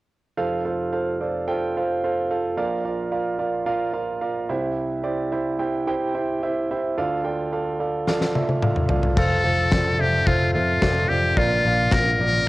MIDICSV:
0, 0, Header, 1, 5, 480
1, 0, Start_track
1, 0, Key_signature, -1, "major"
1, 0, Tempo, 550459
1, 317, Time_signature, 4, 2, 24, 8
1, 10886, End_track
2, 0, Start_track
2, 0, Title_t, "Grand piano"
2, 0, Program_c, 0, 0
2, 327, Note_on_c, 0, 72, 64
2, 328, Note_on_c, 0, 69, 75
2, 329, Note_on_c, 0, 41, 50
2, 329, Note_on_c, 0, 77, 91
2, 330, Note_on_c, 0, 29, 52
2, 330, Note_on_c, 0, 65, 79
2, 495, Control_c, 0, 64, 127
2, 545, Note_off_c, 0, 69, 0
2, 545, Note_off_c, 0, 72, 0
2, 545, Note_off_c, 0, 77, 0
2, 546, Note_off_c, 0, 65, 0
2, 567, Note_on_c, 0, 69, 58
2, 568, Note_on_c, 0, 77, 61
2, 569, Note_on_c, 0, 65, 66
2, 572, Note_on_c, 0, 72, 52
2, 785, Note_off_c, 0, 65, 0
2, 785, Note_off_c, 0, 69, 0
2, 785, Note_off_c, 0, 77, 0
2, 787, Note_off_c, 0, 72, 0
2, 807, Note_on_c, 0, 77, 72
2, 809, Note_on_c, 0, 69, 55
2, 811, Note_on_c, 0, 72, 57
2, 813, Note_on_c, 0, 65, 59
2, 1025, Note_off_c, 0, 69, 0
2, 1025, Note_off_c, 0, 77, 0
2, 1027, Note_off_c, 0, 72, 0
2, 1028, Note_off_c, 0, 65, 0
2, 1048, Note_on_c, 0, 65, 52
2, 1052, Note_on_c, 0, 74, 59
2, 1053, Note_on_c, 0, 69, 55
2, 1053, Note_on_c, 0, 72, 53
2, 1265, Note_off_c, 0, 65, 0
2, 1267, Note_off_c, 0, 69, 0
2, 1267, Note_off_c, 0, 72, 0
2, 1267, Note_off_c, 0, 74, 0
2, 1286, Note_on_c, 0, 69, 69
2, 1287, Note_on_c, 0, 79, 90
2, 1288, Note_on_c, 0, 72, 69
2, 1290, Note_on_c, 0, 65, 77
2, 1504, Note_off_c, 0, 69, 0
2, 1505, Note_off_c, 0, 72, 0
2, 1505, Note_off_c, 0, 79, 0
2, 1506, Note_off_c, 0, 65, 0
2, 1539, Note_on_c, 0, 65, 61
2, 1541, Note_on_c, 0, 72, 57
2, 1543, Note_on_c, 0, 69, 53
2, 1543, Note_on_c, 0, 77, 68
2, 1751, Note_off_c, 0, 65, 0
2, 1752, Note_off_c, 0, 72, 0
2, 1753, Note_off_c, 0, 69, 0
2, 1753, Note_off_c, 0, 77, 0
2, 1777, Note_on_c, 0, 72, 58
2, 1778, Note_on_c, 0, 65, 66
2, 1778, Note_on_c, 0, 77, 73
2, 1780, Note_on_c, 0, 69, 56
2, 1990, Note_off_c, 0, 65, 0
2, 1990, Note_off_c, 0, 72, 0
2, 1990, Note_off_c, 0, 77, 0
2, 1991, Note_off_c, 0, 69, 0
2, 2010, Note_on_c, 0, 77, 73
2, 2011, Note_on_c, 0, 69, 60
2, 2012, Note_on_c, 0, 65, 66
2, 2014, Note_on_c, 0, 72, 55
2, 2209, Note_off_c, 0, 41, 0
2, 2210, Note_off_c, 0, 29, 0
2, 2227, Note_off_c, 0, 65, 0
2, 2227, Note_off_c, 0, 69, 0
2, 2227, Note_off_c, 0, 77, 0
2, 2229, Note_off_c, 0, 72, 0
2, 2240, Note_on_c, 0, 65, 73
2, 2241, Note_on_c, 0, 46, 52
2, 2243, Note_on_c, 0, 34, 52
2, 2243, Note_on_c, 0, 70, 72
2, 2244, Note_on_c, 0, 77, 85
2, 2246, Note_on_c, 0, 74, 75
2, 2249, Control_c, 0, 64, 0
2, 2391, Control_c, 0, 64, 127
2, 2462, Note_off_c, 0, 65, 0
2, 2463, Note_off_c, 0, 70, 0
2, 2464, Note_off_c, 0, 77, 0
2, 2465, Note_off_c, 0, 74, 0
2, 2482, Note_on_c, 0, 65, 57
2, 2482, Note_on_c, 0, 74, 61
2, 2484, Note_on_c, 0, 77, 67
2, 2485, Note_on_c, 0, 70, 61
2, 2703, Note_off_c, 0, 65, 0
2, 2703, Note_off_c, 0, 74, 0
2, 2703, Note_off_c, 0, 77, 0
2, 2704, Note_off_c, 0, 70, 0
2, 2717, Note_on_c, 0, 70, 58
2, 2717, Note_on_c, 0, 74, 60
2, 2717, Note_on_c, 0, 77, 65
2, 2719, Note_on_c, 0, 65, 66
2, 2940, Note_off_c, 0, 70, 0
2, 2940, Note_off_c, 0, 74, 0
2, 2940, Note_off_c, 0, 77, 0
2, 2941, Note_off_c, 0, 65, 0
2, 2955, Note_on_c, 0, 65, 62
2, 2955, Note_on_c, 0, 70, 57
2, 2955, Note_on_c, 0, 74, 55
2, 2957, Note_on_c, 0, 77, 62
2, 3179, Note_off_c, 0, 65, 0
2, 3179, Note_off_c, 0, 70, 0
2, 3179, Note_off_c, 0, 74, 0
2, 3180, Note_off_c, 0, 77, 0
2, 3194, Note_on_c, 0, 65, 84
2, 3194, Note_on_c, 0, 74, 74
2, 3194, Note_on_c, 0, 77, 89
2, 3195, Note_on_c, 0, 70, 74
2, 3416, Note_off_c, 0, 65, 0
2, 3416, Note_off_c, 0, 70, 0
2, 3417, Note_off_c, 0, 74, 0
2, 3419, Note_off_c, 0, 77, 0
2, 3429, Note_on_c, 0, 65, 66
2, 3429, Note_on_c, 0, 70, 55
2, 3430, Note_on_c, 0, 74, 57
2, 3432, Note_on_c, 0, 77, 76
2, 3656, Note_off_c, 0, 65, 0
2, 3656, Note_off_c, 0, 70, 0
2, 3657, Note_off_c, 0, 74, 0
2, 3658, Note_off_c, 0, 77, 0
2, 3673, Note_on_c, 0, 65, 60
2, 3673, Note_on_c, 0, 77, 70
2, 3675, Note_on_c, 0, 70, 62
2, 3676, Note_on_c, 0, 74, 56
2, 3885, Note_off_c, 0, 46, 0
2, 3886, Note_off_c, 0, 34, 0
2, 3898, Note_off_c, 0, 65, 0
2, 3898, Note_off_c, 0, 77, 0
2, 3899, Note_off_c, 0, 70, 0
2, 3900, Note_off_c, 0, 74, 0
2, 3915, Note_on_c, 0, 36, 57
2, 3916, Note_on_c, 0, 48, 55
2, 3917, Note_on_c, 0, 72, 61
2, 3918, Note_on_c, 0, 64, 69
2, 3919, Note_on_c, 0, 67, 65
2, 3919, Note_on_c, 0, 76, 74
2, 3929, Control_c, 0, 64, 0
2, 4085, Control_c, 0, 64, 127
2, 4363, Note_off_c, 0, 64, 0
2, 4363, Note_off_c, 0, 72, 0
2, 4364, Note_off_c, 0, 67, 0
2, 4364, Note_off_c, 0, 76, 0
2, 4390, Note_on_c, 0, 67, 61
2, 4392, Note_on_c, 0, 64, 58
2, 4393, Note_on_c, 0, 74, 73
2, 4394, Note_on_c, 0, 72, 58
2, 4617, Note_off_c, 0, 67, 0
2, 4618, Note_off_c, 0, 64, 0
2, 4619, Note_off_c, 0, 72, 0
2, 4619, Note_off_c, 0, 74, 0
2, 4639, Note_on_c, 0, 76, 70
2, 4641, Note_on_c, 0, 67, 60
2, 4641, Note_on_c, 0, 72, 66
2, 4644, Note_on_c, 0, 64, 64
2, 4861, Note_off_c, 0, 76, 0
2, 4862, Note_off_c, 0, 67, 0
2, 4862, Note_off_c, 0, 72, 0
2, 4864, Note_off_c, 0, 64, 0
2, 4875, Note_on_c, 0, 72, 63
2, 4878, Note_on_c, 0, 67, 60
2, 4878, Note_on_c, 0, 79, 68
2, 4879, Note_on_c, 0, 64, 65
2, 5099, Note_off_c, 0, 72, 0
2, 5101, Note_off_c, 0, 64, 0
2, 5101, Note_off_c, 0, 67, 0
2, 5101, Note_off_c, 0, 79, 0
2, 5120, Note_on_c, 0, 67, 80
2, 5122, Note_on_c, 0, 64, 79
2, 5123, Note_on_c, 0, 72, 79
2, 5123, Note_on_c, 0, 79, 88
2, 5342, Note_off_c, 0, 67, 0
2, 5343, Note_off_c, 0, 64, 0
2, 5344, Note_off_c, 0, 72, 0
2, 5344, Note_off_c, 0, 79, 0
2, 5358, Note_on_c, 0, 67, 55
2, 5359, Note_on_c, 0, 64, 62
2, 5359, Note_on_c, 0, 72, 56
2, 5360, Note_on_c, 0, 76, 73
2, 5581, Note_off_c, 0, 64, 0
2, 5581, Note_off_c, 0, 67, 0
2, 5582, Note_off_c, 0, 72, 0
2, 5582, Note_off_c, 0, 76, 0
2, 5604, Note_on_c, 0, 64, 63
2, 5605, Note_on_c, 0, 67, 58
2, 5606, Note_on_c, 0, 76, 77
2, 5607, Note_on_c, 0, 72, 64
2, 5802, Note_off_c, 0, 36, 0
2, 5803, Note_off_c, 0, 48, 0
2, 5824, Note_off_c, 0, 64, 0
2, 5824, Note_off_c, 0, 67, 0
2, 5825, Note_off_c, 0, 76, 0
2, 5826, Note_off_c, 0, 72, 0
2, 5847, Note_on_c, 0, 72, 61
2, 5848, Note_on_c, 0, 67, 58
2, 5849, Note_on_c, 0, 64, 60
2, 5850, Note_on_c, 0, 76, 75
2, 6066, Note_off_c, 0, 64, 0
2, 6066, Note_off_c, 0, 67, 0
2, 6066, Note_off_c, 0, 72, 0
2, 6067, Note_off_c, 0, 76, 0
2, 6081, Note_on_c, 0, 38, 55
2, 6082, Note_on_c, 0, 65, 82
2, 6082, Note_on_c, 0, 69, 76
2, 6084, Note_on_c, 0, 74, 72
2, 6086, Note_on_c, 0, 50, 57
2, 6087, Note_on_c, 0, 77, 88
2, 6089, Control_c, 0, 64, 0
2, 6217, Control_c, 0, 64, 127
2, 6299, Note_off_c, 0, 69, 0
2, 6303, Note_off_c, 0, 65, 0
2, 6304, Note_off_c, 0, 74, 0
2, 6305, Note_off_c, 0, 77, 0
2, 6312, Note_on_c, 0, 69, 62
2, 6314, Note_on_c, 0, 79, 73
2, 6317, Note_on_c, 0, 65, 61
2, 6317, Note_on_c, 0, 74, 63
2, 6538, Note_off_c, 0, 69, 0
2, 6539, Note_off_c, 0, 79, 0
2, 6541, Note_off_c, 0, 65, 0
2, 6541, Note_off_c, 0, 74, 0
2, 6559, Note_on_c, 0, 69, 60
2, 6560, Note_on_c, 0, 74, 59
2, 6563, Note_on_c, 0, 77, 74
2, 6565, Note_on_c, 0, 65, 61
2, 6782, Note_off_c, 0, 69, 0
2, 6782, Note_off_c, 0, 74, 0
2, 6784, Note_off_c, 0, 77, 0
2, 6785, Note_off_c, 0, 65, 0
2, 6797, Note_on_c, 0, 74, 55
2, 6798, Note_on_c, 0, 65, 59
2, 6800, Note_on_c, 0, 69, 58
2, 6802, Note_on_c, 0, 77, 66
2, 7021, Note_off_c, 0, 65, 0
2, 7021, Note_off_c, 0, 74, 0
2, 7022, Note_off_c, 0, 69, 0
2, 7023, Note_off_c, 0, 77, 0
2, 7042, Note_on_c, 0, 65, 79
2, 7042, Note_on_c, 0, 77, 96
2, 7043, Note_on_c, 0, 69, 77
2, 7043, Note_on_c, 0, 74, 81
2, 7263, Note_off_c, 0, 65, 0
2, 7263, Note_off_c, 0, 77, 0
2, 7264, Note_off_c, 0, 69, 0
2, 7264, Note_off_c, 0, 74, 0
2, 7280, Note_on_c, 0, 65, 64
2, 7281, Note_on_c, 0, 69, 60
2, 7282, Note_on_c, 0, 74, 64
2, 7283, Note_on_c, 0, 76, 74
2, 7502, Note_off_c, 0, 65, 0
2, 7503, Note_off_c, 0, 69, 0
2, 7503, Note_off_c, 0, 74, 0
2, 7504, Note_off_c, 0, 76, 0
2, 7519, Note_on_c, 0, 65, 68
2, 7519, Note_on_c, 0, 74, 62
2, 7519, Note_on_c, 0, 77, 74
2, 7520, Note_on_c, 0, 69, 57
2, 7742, Note_off_c, 0, 65, 0
2, 7742, Note_off_c, 0, 69, 0
2, 7742, Note_off_c, 0, 74, 0
2, 7742, Note_off_c, 0, 77, 0
2, 7761, Note_on_c, 0, 65, 69
2, 7761, Note_on_c, 0, 69, 61
2, 7761, Note_on_c, 0, 74, 62
2, 7763, Note_on_c, 0, 77, 68
2, 7965, Note_off_c, 0, 38, 0
2, 7968, Note_off_c, 0, 50, 0
2, 7983, Note_off_c, 0, 65, 0
2, 7983, Note_off_c, 0, 69, 0
2, 7983, Note_off_c, 0, 74, 0
2, 7984, Note_off_c, 0, 77, 0
2, 8001, Note_on_c, 0, 65, 68
2, 8002, Note_on_c, 0, 72, 70
2, 8005, Note_on_c, 0, 69, 63
2, 8006, Note_on_c, 0, 77, 81
2, 8011, Control_c, 0, 64, 0
2, 8177, Control_c, 0, 64, 127
2, 8217, Note_off_c, 0, 65, 0
2, 8218, Note_off_c, 0, 72, 0
2, 8218, Note_off_c, 0, 77, 0
2, 8220, Note_off_c, 0, 69, 0
2, 8230, Note_on_c, 0, 65, 64
2, 8231, Note_on_c, 0, 72, 57
2, 8231, Note_on_c, 0, 77, 62
2, 8233, Note_on_c, 0, 69, 58
2, 8457, Note_off_c, 0, 65, 0
2, 8458, Note_off_c, 0, 69, 0
2, 8458, Note_off_c, 0, 72, 0
2, 8458, Note_off_c, 0, 77, 0
2, 8474, Note_on_c, 0, 65, 61
2, 8474, Note_on_c, 0, 69, 54
2, 8474, Note_on_c, 0, 72, 60
2, 8476, Note_on_c, 0, 74, 64
2, 8695, Note_off_c, 0, 69, 0
2, 8696, Note_off_c, 0, 65, 0
2, 8698, Note_off_c, 0, 72, 0
2, 8700, Note_off_c, 0, 74, 0
2, 8709, Note_on_c, 0, 69, 53
2, 8710, Note_on_c, 0, 65, 58
2, 8711, Note_on_c, 0, 72, 53
2, 8711, Note_on_c, 0, 76, 70
2, 8936, Note_off_c, 0, 69, 0
2, 8937, Note_off_c, 0, 65, 0
2, 8937, Note_off_c, 0, 76, 0
2, 8938, Note_off_c, 0, 72, 0
2, 8954, Note_on_c, 0, 69, 64
2, 8954, Note_on_c, 0, 72, 72
2, 8954, Note_on_c, 0, 77, 86
2, 8957, Note_on_c, 0, 65, 78
2, 9179, Note_off_c, 0, 69, 0
2, 9179, Note_off_c, 0, 72, 0
2, 9179, Note_off_c, 0, 77, 0
2, 9180, Note_off_c, 0, 65, 0
2, 9193, Note_on_c, 0, 72, 53
2, 9194, Note_on_c, 0, 69, 58
2, 9195, Note_on_c, 0, 65, 60
2, 9195, Note_on_c, 0, 76, 64
2, 9414, Note_off_c, 0, 69, 0
2, 9418, Note_off_c, 0, 65, 0
2, 9419, Note_off_c, 0, 72, 0
2, 9420, Note_off_c, 0, 76, 0
2, 9427, Note_on_c, 0, 69, 57
2, 9431, Note_on_c, 0, 65, 58
2, 9431, Note_on_c, 0, 74, 69
2, 9433, Note_on_c, 0, 72, 60
2, 9656, Note_off_c, 0, 69, 0
2, 9657, Note_off_c, 0, 65, 0
2, 9657, Note_off_c, 0, 74, 0
2, 9658, Note_off_c, 0, 72, 0
2, 9675, Note_on_c, 0, 69, 51
2, 9678, Note_on_c, 0, 72, 58
2, 9680, Note_on_c, 0, 65, 64
2, 9684, Note_on_c, 0, 74, 71
2, 9900, Note_off_c, 0, 69, 0
2, 9901, Note_off_c, 0, 72, 0
2, 9902, Note_off_c, 0, 65, 0
2, 9904, Note_off_c, 0, 74, 0
2, 9913, Note_on_c, 0, 46, 50
2, 9916, Note_on_c, 0, 70, 76
2, 9917, Note_on_c, 0, 62, 85
2, 9919, Note_on_c, 0, 65, 73
2, 9919, Note_on_c, 0, 74, 86
2, 9932, Control_c, 0, 64, 0
2, 10103, Control_c, 0, 64, 127
2, 10140, Note_off_c, 0, 62, 0
2, 10140, Note_off_c, 0, 70, 0
2, 10141, Note_off_c, 0, 65, 0
2, 10141, Note_off_c, 0, 74, 0
2, 10165, Note_on_c, 0, 70, 63
2, 10166, Note_on_c, 0, 62, 60
2, 10166, Note_on_c, 0, 65, 58
2, 10166, Note_on_c, 0, 77, 72
2, 10385, Note_off_c, 0, 62, 0
2, 10385, Note_off_c, 0, 65, 0
2, 10385, Note_off_c, 0, 70, 0
2, 10385, Note_off_c, 0, 77, 0
2, 10401, Note_on_c, 0, 70, 61
2, 10401, Note_on_c, 0, 74, 65
2, 10403, Note_on_c, 0, 62, 61
2, 10405, Note_on_c, 0, 65, 53
2, 10601, Note_off_c, 0, 46, 0
2, 10622, Note_off_c, 0, 70, 0
2, 10622, Note_off_c, 0, 74, 0
2, 10623, Note_off_c, 0, 62, 0
2, 10624, Note_off_c, 0, 65, 0
2, 10640, Note_on_c, 0, 74, 67
2, 10643, Note_on_c, 0, 62, 56
2, 10647, Note_on_c, 0, 65, 49
2, 10858, Note_off_c, 0, 62, 0
2, 10860, Note_off_c, 0, 65, 0
2, 10862, Note_off_c, 0, 74, 0
2, 10886, End_track
3, 0, Start_track
3, 0, Title_t, "Muted trumpet"
3, 0, Program_c, 1, 59
3, 8009, Note_on_c, 1, 69, 77
3, 8725, Note_on_c, 1, 67, 74
3, 8738, Note_off_c, 1, 69, 0
3, 8953, Note_on_c, 1, 65, 70
3, 8966, Note_off_c, 1, 67, 0
3, 9184, Note_off_c, 1, 65, 0
3, 9189, Note_on_c, 1, 65, 72
3, 9667, Note_on_c, 1, 67, 84
3, 9680, Note_off_c, 1, 65, 0
3, 9919, Note_on_c, 1, 65, 73
3, 9932, Note_off_c, 1, 67, 0
3, 10404, Note_on_c, 1, 70, 84
3, 10417, Note_off_c, 1, 65, 0
3, 10886, Note_off_c, 1, 70, 0
3, 10886, End_track
4, 0, Start_track
4, 0, Title_t, "Picked electric bass"
4, 0, Program_c, 2, 34
4, 7997, Note_on_c, 2, 29, 78
4, 8195, Note_off_c, 2, 29, 0
4, 8240, Note_on_c, 2, 29, 85
4, 8437, Note_off_c, 2, 29, 0
4, 8478, Note_on_c, 2, 29, 75
4, 8675, Note_off_c, 2, 29, 0
4, 8717, Note_on_c, 2, 29, 88
4, 8915, Note_off_c, 2, 29, 0
4, 8953, Note_on_c, 2, 29, 88
4, 9194, Note_on_c, 2, 41, 75
4, 9207, Note_off_c, 2, 29, 0
4, 9393, Note_off_c, 2, 41, 0
4, 9434, Note_on_c, 2, 29, 79
4, 9633, Note_off_c, 2, 29, 0
4, 9685, Note_on_c, 2, 29, 73
4, 9879, Note_off_c, 2, 29, 0
4, 9914, Note_on_c, 2, 34, 69
4, 10113, Note_off_c, 2, 34, 0
4, 10158, Note_on_c, 2, 34, 94
4, 10355, Note_off_c, 2, 34, 0
4, 10399, Note_on_c, 2, 34, 76
4, 10596, Note_off_c, 2, 34, 0
4, 10636, Note_on_c, 2, 34, 74
4, 10834, Note_off_c, 2, 34, 0
4, 10886, End_track
5, 0, Start_track
5, 0, Title_t, "Drums"
5, 7040, Note_on_c, 9, 38, 43
5, 7127, Note_off_c, 9, 38, 0
5, 7160, Note_on_c, 9, 38, 40
5, 7247, Note_off_c, 9, 38, 0
5, 7284, Note_on_c, 9, 48, 56
5, 7371, Note_off_c, 9, 48, 0
5, 7402, Note_on_c, 9, 48, 50
5, 7489, Note_off_c, 9, 48, 0
5, 7521, Note_on_c, 9, 47, 64
5, 7608, Note_off_c, 9, 47, 0
5, 7639, Note_on_c, 9, 45, 50
5, 7726, Note_off_c, 9, 45, 0
5, 7752, Note_on_c, 9, 43, 78
5, 7839, Note_off_c, 9, 43, 0
5, 7875, Note_on_c, 9, 43, 63
5, 7962, Note_off_c, 9, 43, 0
5, 7997, Note_on_c, 9, 36, 96
5, 7998, Note_on_c, 9, 49, 73
5, 8084, Note_off_c, 9, 36, 0
5, 8085, Note_off_c, 9, 49, 0
5, 8472, Note_on_c, 9, 38, 85
5, 8477, Note_on_c, 9, 36, 97
5, 8559, Note_off_c, 9, 38, 0
5, 8564, Note_off_c, 9, 36, 0
5, 8954, Note_on_c, 9, 36, 96
5, 9041, Note_off_c, 9, 36, 0
5, 9435, Note_on_c, 9, 38, 85
5, 9436, Note_on_c, 9, 36, 89
5, 9522, Note_off_c, 9, 38, 0
5, 9523, Note_off_c, 9, 36, 0
5, 9915, Note_on_c, 9, 36, 87
5, 10002, Note_off_c, 9, 36, 0
5, 10390, Note_on_c, 9, 38, 87
5, 10398, Note_on_c, 9, 36, 98
5, 10478, Note_off_c, 9, 38, 0
5, 10485, Note_off_c, 9, 36, 0
5, 10886, End_track
0, 0, End_of_file